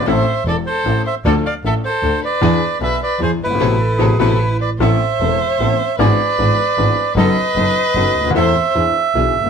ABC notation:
X:1
M:3/4
L:1/16
Q:1/4=152
K:Am
V:1 name="Bandoneon"
e4 d2 c4 e2 | d2 f2 e2 c4 d2- | d4 e2 d2 c2 B2- | B6 B4 d2 |
e12 | d12 | ^d12 | e12 |]
V:2 name="Violin"
c4 A2 A4 c2 | A2 d2 A2 A4 B2- | B4 B2 B2 ^G2 E2- | E6 E4 B2 |
c12 | B12 | B12 | c4 z8 |]
V:3 name="Clarinet"
z12 | z12 | z12 | z2 A2 ^G2 A2 E4 |
z12 | z12 | z12 | z12 |]
V:4 name="String section"
[CEA]2 z2 [CEA]2 z2 [CEA]2 z2 | [DFA]2 z2 [DFA]2 z2 [DFA]2 z2 | [DE^G]2 z2 [DEG]2 z2 [DEG]2 z2 | [CEA]2 z2 [CEA]2 [CEA]2 z4 |
[B,CA]2 z2 [B,CA]2 z2 [B,CA]2 z2 | [DE^G]2 z2 [DEG]2 z2 [DEG]2 z2 | [B,^DA]2 z2 [B,DA]2 z2 [B,DA]2 z2 | [CEA]2 z2 [DE^G]2 z2 [DEG]2 z2 |]
V:5 name="Upright piano" clef=bass
[A,,,A,,E,A,CA]2 z2 [E,,,E,,]2 z2 [A,,,A,,]2 z2 | [D,,D,F,A,DA]2 z2 [A,,,A,,]2 z2 [D,,D,]2 z2 | [E,,E,B,D^G]2 z2 [B,,,B,,]2 z2 [E,,E,]2 z/2 ^F,,,/2 =G,,,/2 ^G,,,/2 | [A,,B,,C,]2 z2 [A,,B,,C,]2 [A,,B,,C,]2 z4 |
[A,,,A,,E,B,CA]2 z2 [E,,,E,,E,B,CA]2 z2 [A,,,A,,E,B,CA]2 z2 | [^G,,,^G,,E,B,D^G]2 z2 [G,,,G,,E,B,DG]2 z2 [G,,,G,,E,B,DG]2 z2 | [^F,,^F,B,^DA]2 z2 [F,,F,B,DA]2 z2 [F,,F,B,DA]2 z/2 ^C,,/2 =D,,/2 ^D,,/2 | [E,,E,A,CA]2 z2 [E,,E,B,D^G]2 z2 [B,,,B,,E,B,DG]2 z/2 ^F,,,/2 =G,,,/2 z/2 |]
V:6 name="Double bass" clef=bass
A,,,2 z2 E,,,2 z2 A,,,2 z2 | D,,2 z2 A,,,2 z2 D,,2 z2 | E,,2 z2 B,,,2 z2 E,,2 G,,,2 | A,,,2 z2 A,,,2 A,,,2 z4 |
A,,,2 z2 E,,,2 z2 A,,,2 z2 | ^G,,,2 z2 G,,,2 z2 G,,,2 z2 | ^F,,,2 z2 F,,,2 z2 F,,,2 D,,2 | E,,2 z2 E,,2 z2 B,,,2 G,,,2 |]